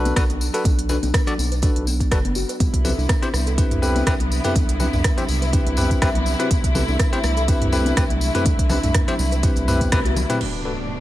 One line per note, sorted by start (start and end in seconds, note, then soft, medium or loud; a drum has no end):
0.00 0.12 B1 loud
0.00 0.14 D4 medium
0.00 0.14 F#4 medium
0.00 0.14 A4 medium
0.00 0.14 B4 medium
0.05 0.16 D4 medium
0.05 closed hi-hat soft
0.05 tambourine soft
0.05 high conga loud
0.16 0.49 B1 medium
0.16 0.23 D4 medium
0.16 0.23 F#4 medium
0.16 0.23 A4 medium
0.16 0.23 B4 loud
0.16 kick loud
0.16 cross-stick loud
0.16 closed hi-hat medium
0.16 tambourine medium
0.16 muted conga medium
0.30 0.40 F#3 loud
0.30 closed hi-hat soft
0.30 high conga medium
0.41 tambourine medium
0.54 0.63 D4 medium
0.54 0.63 F#4 medium
0.54 0.63 A4 medium
0.54 0.60 A4 medium
0.54 0.63 B4 loud
0.54 closed hi-hat soft
0.54 tambourine soft
0.64 0.98 B1 loud
0.64 0.78 D4 medium
0.64 kick loud
0.64 closed hi-hat medium
0.64 tambourine medium
0.64 muted conga medium
0.64 high conga loud
0.79 closed hi-hat soft
0.89 0.96 D4 medium
0.89 1.02 D4 medium
0.89 0.96 F#4 medium
0.89 0.96 A4 medium
0.89 0.96 B4 medium
0.89 tambourine loud
0.89 low conga medium
1.03 1.11 B1 loud
1.03 1.13 D4 medium
1.03 closed hi-hat soft
1.03 tambourine soft
1.03 muted conga soft
1.03 high conga medium
1.14 kick loud
1.14 cross-stick loud
1.14 closed hi-hat medium
1.14 tambourine medium
1.14 high conga medium
1.27 1.37 F#3 loud
1.27 1.33 D4 loud
1.27 1.33 F#4 medium
1.27 1.33 A4 medium
1.27 1.33 D5 loud
1.27 closed hi-hat soft
1.27 tambourine soft
1.38 1.71 B1 medium
1.38 tambourine medium
1.38 muted conga soft
1.38 high conga medium
1.52 1.62 B4 medium
1.52 closed hi-hat soft
1.52 tambourine soft
1.62 1.75 D4 medium
1.62 1.85 D4 medium
1.62 1.84 F#4 medium
1.62 1.85 A4 medium
1.62 1.85 B4 medium
1.62 kick loud
1.62 closed hi-hat medium
1.62 tambourine medium
1.76 2.13 B1 loud
1.76 closed hi-hat soft
1.76 muted conga soft
1.87 1.99 B3 medium
1.87 tambourine loud
2.00 2.10 B3 medium
2.00 kick medium
2.00 closed hi-hat soft
2.00 tambourine soft
2.11 2.44 F#1 medium
2.11 2.18 D4 medium
2.11 2.18 F#4 medium
2.11 2.18 A4 medium
2.11 2.18 B4 loud
2.11 kick loud
2.11 cross-stick loud
2.11 closed hi-hat medium
2.11 tambourine medium
2.11 muted conga soft
2.25 2.35 B3 medium
2.25 closed hi-hat soft
2.25 high conga medium
2.35 2.48 F#4 medium
2.35 tambourine medium
2.49 2.60 B4 medium
2.49 closed hi-hat soft
2.49 tambourine soft
2.60 2.93 C2 loud
2.60 10.37 C3 medium
2.60 6.47 B3 medium
2.60 2.73 B3 medium
2.60 10.37 E4 medium
2.60 kick loud
2.60 closed hi-hat medium
2.60 tambourine medium
2.60 muted conga soft
2.60 high conga medium
2.74 kick medium
2.74 closed hi-hat soft
2.85 2.91 C4 medium
2.85 2.91 E4 medium
2.85 2.91 G4 medium
2.85 2.97 A4 medium
2.85 2.91 B4 medium
2.85 tambourine medium
2.85 low conga medium
2.98 3.06 C2 loud
2.98 3.09 D4 medium
2.98 tambourine soft
2.98 muted conga soft
3.09 kick loud
3.09 cross-stick loud
3.09 closed hi-hat medium
3.09 tambourine soft
3.09 high conga medium
3.22 3.28 C4 loud
3.22 3.28 E4 medium
3.22 3.28 G4 medium
3.22 3.33 B4 medium
3.22 3.28 C5 loud
3.22 closed hi-hat soft
3.22 tambourine soft
3.33 3.66 C2 medium
3.33 cross-stick medium
3.33 tambourine medium
3.33 muted conga medium
3.33 high conga medium
3.46 3.53 A4 medium
3.46 closed hi-hat soft
3.46 tambourine soft
3.58 3.80 C4 medium
3.58 3.71 D4 medium
3.58 3.80 E4 medium
3.58 3.80 G4 medium
3.58 3.80 B4 medium
3.58 kick loud
3.58 closed hi-hat medium
3.58 tambourine soft
3.71 4.03 C2 loud
3.71 closed hi-hat soft
3.71 mid tom medium
3.71 muted conga soft
3.82 4.04 C4 medium
3.82 4.04 E4 medium
3.82 4.04 G4 medium
3.82 3.94 A4 medium
3.82 4.04 B4 medium
3.82 tambourine medium
3.96 4.06 D4 medium
3.96 closed hi-hat soft
3.96 tambourine soft
3.96 high conga medium
4.06 4.39 C2 loud
4.06 4.13 C4 loud
4.06 4.13 E4 medium
4.06 4.13 G4 medium
4.06 4.13 B4 loud
4.06 kick loud
4.06 cross-stick loud
4.06 closed hi-hat medium
4.06 tambourine soft
4.06 muted conga medium
4.20 4.30 F#3 loud
4.20 closed hi-hat soft
4.20 high conga medium
4.32 tambourine medium
4.44 4.53 C4 medium
4.44 4.53 E4 medium
4.44 4.53 G4 medium
4.44 4.50 A4 medium
4.44 4.53 B4 medium
4.44 closed hi-hat soft
4.44 mid tom medium
4.44 tambourine soft
4.55 4.88 C2 loud
4.55 4.68 D4 medium
4.55 kick loud
4.55 closed hi-hat medium
4.55 tambourine soft
4.55 muted conga soft
4.55 high conga medium
4.69 closed hi-hat soft
4.80 4.87 C4 medium
4.80 4.92 D4 medium
4.80 4.87 E4 medium
4.80 4.87 G4 medium
4.80 4.87 B4 medium
4.80 tambourine medium
4.80 low conga medium
4.93 5.02 C2 medium
4.93 5.04 D4 medium
4.93 mid tom medium
4.93 tambourine soft
4.93 muted conga soft
4.93 high conga medium
5.04 kick loud
5.04 cross-stick loud
5.04 closed hi-hat medium
5.04 tambourine soft
5.04 high conga medium
5.17 5.28 F#3 medium
5.17 5.23 C4 loud
5.17 5.23 E4 medium
5.17 5.23 G4 medium
5.17 5.23 C5 loud
5.17 closed hi-hat soft
5.17 tambourine soft
5.28 5.61 C2 medium
5.28 tambourine medium
5.28 muted conga medium
5.28 high conga medium
5.42 5.52 B4 medium
5.42 closed hi-hat soft
5.42 tambourine soft
5.53 5.75 C4 medium
5.53 5.66 D4 medium
5.53 5.75 E4 medium
5.53 5.75 G4 medium
5.53 5.75 B4 medium
5.53 kick loud
5.53 closed hi-hat medium
5.53 tambourine medium
5.66 5.98 C2 loud
5.66 closed hi-hat soft
5.66 muted conga soft
5.77 5.89 B3 medium
5.77 5.99 C4 medium
5.77 5.99 E4 medium
5.77 5.99 G4 medium
5.77 5.99 B4 medium
5.77 mid tom medium
5.77 tambourine medium
5.91 6.01 D4 medium
5.91 kick medium
5.91 closed hi-hat soft
5.91 tambourine soft
6.02 6.35 C2 loud
6.02 6.09 C4 loud
6.02 6.09 E4 medium
6.02 6.09 G4 medium
6.02 6.09 B4 loud
6.02 kick loud
6.02 cross-stick loud
6.02 closed hi-hat medium
6.02 tambourine medium
6.02 muted conga soft
6.15 6.25 F#3 loud
6.15 closed hi-hat soft
6.15 high conga medium
6.26 tambourine medium
6.40 6.48 C4 medium
6.40 6.48 E4 medium
6.40 6.50 F#4 medium
6.40 6.48 G4 medium
6.40 6.48 B4 loud
6.40 closed hi-hat soft
6.40 tambourine soft
6.51 6.83 C2 loud
6.51 10.37 A3 medium
6.51 6.63 B3 medium
6.51 kick loud
6.51 closed hi-hat medium
6.51 tambourine soft
6.51 muted conga medium
6.51 high conga medium
6.64 kick medium
6.64 closed hi-hat soft
6.75 6.82 C4 medium
6.75 6.82 E4 medium
6.75 6.82 G4 medium
6.75 6.87 A4 medium
6.75 6.82 B4 medium
6.75 tambourine medium
6.75 low conga loud
6.88 6.97 C2 loud
6.88 6.99 D4 medium
6.88 tambourine soft
6.88 muted conga soft
6.99 kick loud
6.99 cross-stick loud
6.99 closed hi-hat medium
6.99 tambourine soft
6.99 high conga medium
7.13 7.18 C4 loud
7.13 7.18 E4 medium
7.13 7.18 G4 medium
7.13 7.23 B4 medium
7.13 7.18 C5 loud
7.13 closed hi-hat soft
7.13 tambourine soft
7.24 7.56 C2 loud
7.24 cross-stick medium
7.24 tambourine medium
7.24 muted conga medium
7.24 high conga medium
7.37 7.43 A4 medium
7.37 closed hi-hat soft
7.37 tambourine soft
7.48 7.70 C4 medium
7.48 7.61 D4 medium
7.48 7.70 E4 medium
7.48 7.70 G4 medium
7.48 7.70 B4 medium
7.48 kick loud
7.48 closed hi-hat medium
7.48 tambourine medium
7.61 7.93 C2 loud
7.61 closed hi-hat soft
7.61 mid tom medium
7.61 muted conga soft
7.72 7.94 C4 medium
7.72 7.94 E4 medium
7.72 7.94 G4 medium
7.72 7.85 A4 medium
7.72 7.94 B4 medium
7.72 tambourine medium
7.85 7.96 D4 medium
7.85 closed hi-hat soft
7.85 tambourine soft
7.85 high conga medium
7.96 8.30 C2 loud
7.96 8.04 C4 medium
7.96 8.04 E4 medium
7.96 8.04 G4 medium
7.96 8.04 B4 loud
7.96 kick loud
7.96 cross-stick loud
7.96 closed hi-hat medium
7.96 tambourine soft
7.96 muted conga medium
8.10 8.20 F#3 loud
8.10 closed hi-hat soft
8.10 high conga medium
8.21 tambourine medium
8.35 8.44 C4 medium
8.35 8.44 E4 medium
8.35 8.44 G4 medium
8.35 8.41 A4 medium
8.35 8.44 B4 loud
8.35 closed hi-hat soft
8.35 mid tom medium
8.35 tambourine soft
8.45 8.79 C2 medium
8.45 8.58 D4 medium
8.45 kick loud
8.45 closed hi-hat medium
8.45 tambourine soft
8.45 muted conga medium
8.45 high conga loud
8.59 kick medium
8.59 closed hi-hat soft
8.70 8.77 C4 medium
8.70 8.82 D4 medium
8.70 8.77 E4 medium
8.70 8.77 G4 medium
8.70 8.77 B4 medium
8.70 tambourine medium
8.70 low conga loud
8.83 8.92 C2 loud
8.83 8.94 D4 medium
8.83 closed hi-hat soft
8.83 mid tom medium
8.83 tambourine soft
8.83 muted conga soft
8.83 high conga medium
8.94 kick loud
8.94 cross-stick loud
8.94 closed hi-hat medium
8.94 tambourine soft
8.94 high conga medium
9.08 9.18 F#3 loud
9.08 9.13 C4 loud
9.08 9.13 E4 medium
9.08 9.13 G4 medium
9.08 9.13 C5 loud
9.08 closed hi-hat soft
9.08 tambourine soft
9.18 9.52 C2 loud
9.18 tambourine medium
9.18 muted conga soft
9.18 high conga medium
9.31 9.42 B4 medium
9.31 closed hi-hat soft
9.31 tambourine soft
9.43 9.65 C4 medium
9.43 9.56 D4 medium
9.43 9.65 E4 medium
9.43 9.65 G4 medium
9.43 9.65 B4 medium
9.43 kick loud
9.43 closed hi-hat medium
9.43 tambourine soft
9.56 9.88 C2 loud
9.56 closed hi-hat soft
9.56 tambourine soft
9.56 muted conga soft
9.68 9.80 A3 medium
9.68 9.89 C4 medium
9.68 9.89 E4 medium
9.68 9.90 G4 medium
9.68 9.90 B4 medium
9.68 mid tom medium
9.68 tambourine medium
9.81 9.91 B3 loud
9.81 kick medium
9.81 closed hi-hat soft
9.81 tambourine soft
9.92 10.25 C2 medium
9.92 9.99 C4 loud
9.92 9.99 E4 medium
9.92 9.99 G4 medium
9.92 9.99 B4 loud
9.92 kick loud
9.92 cross-stick loud
9.92 closed hi-hat medium
9.92 tambourine medium
9.92 muted conga medium
10.05 10.11 F#4 medium
10.05 closed hi-hat soft
10.05 high conga medium
10.16 high tom medium
10.16 tambourine medium
10.16 low conga medium
10.29 10.36 F#3 medium
10.29 10.39 C4 medium
10.29 10.39 E4 medium
10.29 10.39 G4 medium
10.29 10.39 B4 loud
10.29 closed hi-hat soft
10.29 mid tom medium
10.29 tambourine soft
10.41 11.00 B2 medium
10.41 11.00 A3 medium
10.41 11.00 D4 medium
10.41 crash medium
10.41 impact medium
10.65 10.72 D4 medium
10.65 10.72 F#4 medium
10.65 10.72 A4 medium
10.65 10.72 B4 medium